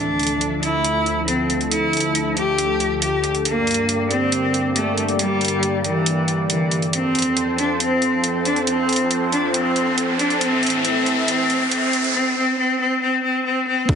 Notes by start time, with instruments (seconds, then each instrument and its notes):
Already playing: analog synth pad D2 D3 F3 A3 A4, cello D4
0.19 closed hi-hat
0.23 closed hi-hat
0.27 closed hi-hat
0.41 closed hi-hat
0.63 cello E4, closed hi-hat
0.85 closed hi-hat
1.06 closed hi-hat
1.28 cello C4, closed hi-hat
1.50 closed hi-hat
1.61 closed hi-hat
1.71 cello E4, closed hi-hat
1.93 closed hi-hat
1.97 closed hi-hat
2.00 closed hi-hat
2.15 closed hi-hat
2.37 cello G4, closed hi-hat
2.58 closed hi-hat
2.80 closed hi-hat
3.02 cello G4, closed hi-hat
3.24 closed hi-hat
3.35 closed hi-hat
3.45 analog synth pad G2 A#3 G4 D5, cello A#3, closed hi-hat
3.67 closed hi-hat
3.71 closed hi-hat
3.74 closed hi-hat
3.89 closed hi-hat
4.11 cello C4, closed hi-hat
4.32 closed hi-hat
4.54 closed hi-hat
4.76 cello A3, closed hi-hat
4.98 closed hi-hat
5.08 closed hi-hat
5.19 cello G3, closed hi-hat
5.41 closed hi-hat
5.45 closed hi-hat
5.48 closed hi-hat
5.63 closed hi-hat
5.84 cello E3, closed hi-hat
6.06 closed hi-hat
6.28 closed hi-hat
6.50 cello E3, closed hi-hat
6.71 closed hi-hat
6.82 closed hi-hat
6.93 analog synth pad F2 F3 C4 A4 C5, cello C4, closed hi-hat, riser
7.15 closed hi-hat
7.19 closed hi-hat
7.22 closed hi-hat
7.37 closed hi-hat
7.58 cello D4, closed hi-hat
7.80 cello C4, closed hi-hat
8.02 closed hi-hat
8.24 closed hi-hat
8.45 cello D4, closed hi-hat
8.56 closed hi-hat
8.67 cello C4, closed hi-hat
8.89 closed hi-hat
8.93 closed hi-hat
8.96 closed hi-hat
9.11 closed hi-hat
9.32 cello D4, closed hi-hat
9.54 cello C4, closed hi-hat
9.76 closed hi-hat
9.98 closed hi-hat
10.19 cello D4, closed hi-hat
10.30 closed hi-hat
10.41 analog synth pad A2 E3 A4 E5, cello C4, closed hi-hat
10.63 closed hi-hat
10.66 closed hi-hat
10.70 closed hi-hat
10.84 cello C4, closed hi-hat
11.06 closed hi-hat
11.28 cello C4, closed hi-hat
11.50 closed hi-hat
11.71 cello C4, closed hi-hat
11.93 closed hi-hat
12.04 closed hi-hat
12.15 cello C4
12.37 cello C4
12.58 cello C4
12.80 cello C4
13.02 cello C4
13.24 cello C4
13.45 cello C4
13.67 cello C4
13.89 wobble bass D2, kick, closed hi-hat, crash, impact